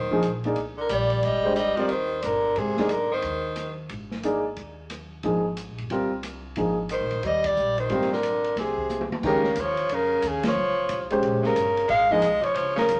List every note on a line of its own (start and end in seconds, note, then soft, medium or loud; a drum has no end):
0.00 0.21 D#2 medium
0.00 0.40 D#3 medium
0.00 0.42 C5 medium
0.11 0.22 F3 medium
0.11 0.22 A#3 medium
0.11 0.23 D#4 medium
0.11 0.23 G#4 medium
0.23 0.54 A#1 medium
0.23 hi-hat pedal soft
0.23 ride medium
0.44 0.56 A#3 medium
0.44 0.56 D#4 medium
0.44 0.56 G#4 medium
0.44 0.57 D5 medium
0.44 ride soft
0.56 0.87 C2 medium
0.56 ride soft
0.77 0.89 D3 medium
0.77 0.91 A#4 medium
0.89 1.21 A#1 medium
0.89 1.23 G3 medium
0.89 1.26 D5 medium
0.89 cross-stick medium
0.89 hi-hat pedal medium
0.89 ride medium
1.10 ride soft
1.23 1.74 G#1 medium
1.23 1.55 G3 medium
1.23 1.57 D#5 medium
1.23 ride medium
1.44 1.55 G#3 medium
1.44 1.55 D4 medium
1.44 1.56 G4 medium
1.44 1.56 C5 medium
1.56 1.78 G3 medium
1.56 1.82 D#5 medium
1.56 hi-hat pedal soft
1.56 ride medium
1.77 1.87 F3 medium
1.77 1.88 G3 medium
1.77 1.89 C4 soft
1.77 1.89 F4 medium
1.77 1.89 A#4 medium
1.77 1.91 D5 medium
1.77 muted upright bass stroke soft
1.77 ride soft
1.88 2.21 D#2 medium
1.88 2.24 D#3 medium
1.88 ride medium
1.92 2.27 C5 medium
2.22 2.55 G1 medium
2.22 2.59 D3 medium
2.22 2.60 A#4 medium
2.22 cross-stick medium
2.22 hi-hat pedal soft
2.22 ride medium
2.56 3.20 G#2 medium
2.56 2.92 C3 medium
2.56 2.95 G#4 medium
2.56 ride medium
2.77 2.89 A#3 medium
2.77 2.89 D#4 medium
2.77 2.89 G#4 medium
2.77 2.90 D5 medium
2.77 snare soft
2.89 3.11 D3 medium
2.89 hi-hat pedal soft
2.89 ride medium
2.93 3.13 A#4 medium
3.11 3.74 D#3 medium
3.11 3.75 C5 medium
3.22 3.87 D#2 medium
3.22 ride medium
3.56 cross-stick medium
3.56 hi-hat pedal soft
3.56 ride medium
3.89 4.54 G#1 medium
3.89 ride medium
4.11 snare soft
4.23 4.43 A#3 medium
4.23 4.43 D#4 medium
4.23 4.43 G#4 medium
4.23 4.44 D5 medium
4.23 hi-hat pedal soft
4.23 ride medium
4.57 5.20 D#2 medium
4.57 ride soft
4.90 cross-stick medium
4.90 hi-hat pedal soft
4.90 ride medium
5.23 5.65 G#1 medium
5.23 5.43 F3 medium
5.23 5.43 A#3 medium
5.23 5.43 D#4 soft
5.23 5.44 G#4 medium
5.23 ride soft
5.57 hi-hat pedal medium
5.57 ride medium
5.68 5.79 A#1 medium
5.78 5.90 G1 medium
5.78 ride soft
5.90 6.54 C2 medium
5.90 6.10 G3 medium
5.90 6.10 C4 medium
5.90 6.10 F4 medium
5.90 6.10 A#4 medium
5.90 ride medium
6.23 cross-stick medium
6.23 hi-hat pedal medium
6.23 ride medium
6.56 6.98 G#1 medium
6.56 6.76 F3 medium
6.56 6.76 A#3 soft
6.56 6.76 D#4 soft
6.56 6.76 G#4 medium
6.56 ride medium
6.89 7.25 D#3 medium
6.89 7.28 C5 medium
6.89 hi-hat pedal soft
6.89 ride medium
7.01 7.11 A#1 medium
7.11 7.23 A1 medium
7.11 ride soft
7.23 7.54 D#2 medium
7.23 7.46 G3 medium
7.23 7.48 D#5 medium
7.23 ride medium
7.44 7.80 G3 medium
7.44 7.81 D5 medium
7.44 kick medium
7.44 ride medium
7.57 7.88 A#1 medium
7.57 hi-hat pedal soft
7.78 8.12 D#3 medium
7.78 8.12 C5 medium
7.78 ride soft
7.89 8.53 G#1 medium
7.89 8.09 G3 medium
7.89 8.10 C4 medium
7.89 8.10 F4 medium
7.89 8.10 A#4 medium
7.89 ride medium
8.01 snare soft
8.12 8.54 D3 medium
8.12 8.55 A#4 medium
8.12 snare soft
8.23 hi-hat pedal soft
8.23 ride medium
8.44 ride soft
8.56 9.07 C2 medium
8.56 9.08 C3 medium
8.56 9.09 G#4 medium
8.56 snare soft
8.56 ride medium
8.78 kick soft
8.89 hi-hat pedal medium
8.89 high tom soft
9.01 high tom medium
9.11 muted upright bass stroke soft
9.11 high tom medium
9.23 9.55 C#2 medium
9.23 9.60 C#3 medium
9.23 9.43 D#3 medium
9.23 9.43 G#3 medium
9.23 9.43 C#4 medium
9.23 9.43 G4 medium
9.23 9.62 A#4 medium
9.23 kick medium
9.23 crash medium
9.44 snare soft
9.56 9.89 D#2 medium
9.56 9.94 F3 medium
9.56 hi-hat pedal medium
9.56 ride medium
9.60 9.96 C#5 medium
9.77 ride soft
9.89 10.22 F2 medium
9.89 10.25 C#3 medium
9.89 ride medium
9.95 10.29 A#4 medium
10.22 10.55 D#2 medium
10.22 10.45 C#3 medium
10.22 hi-hat pedal medium
10.22 ride medium
10.28 10.46 G#4 medium
10.43 11.08 F3 medium
10.43 snare medium
10.43 ride medium
10.49 11.09 C#5 medium
10.56 10.89 C#2 medium
10.89 11.22 C2 medium
10.89 hi-hat pedal soft
10.89 ride medium
11.10 11.54 G#3 medium
11.10 11.54 C#4 medium
11.10 11.54 G4 medium
11.10 11.55 C5 medium
11.10 ride soft
11.22 11.42 A#1 medium
11.22 ride medium
11.42 11.85 C#3 medium
11.42 11.87 A#4 medium
11.42 muted upright bass stroke soft
11.42 snare soft
11.56 11.88 G1 medium
11.56 hi-hat pedal medium
11.56 ride medium
11.77 ride soft
11.88 12.22 G#1 medium
11.88 12.10 G#3 medium
11.88 12.13 F5 loud
11.88 ride medium
12.10 12.22 F3 medium
12.10 12.43 G#3 medium
12.10 12.22 A#3 medium
12.10 12.22 D#4 medium
12.10 12.22 G#4 medium
12.10 12.46 D#5 loud
12.22 12.43 C2 medium
12.22 hi-hat pedal medium
12.22 ride medium
12.42 12.53 F3 medium
12.42 12.56 C#5 medium
12.42 muted upright bass stroke soft
12.42 ride soft
12.54 12.88 C#2 medium
12.54 12.75 F3 medium
12.54 12.76 C#5 medium
12.54 ride medium
12.76 13.00 C#3 medium
12.76 13.00 A#4 medium
12.76 snare medium
12.89 13.00 D#2 medium
12.89 hi-hat pedal medium
12.89 ride medium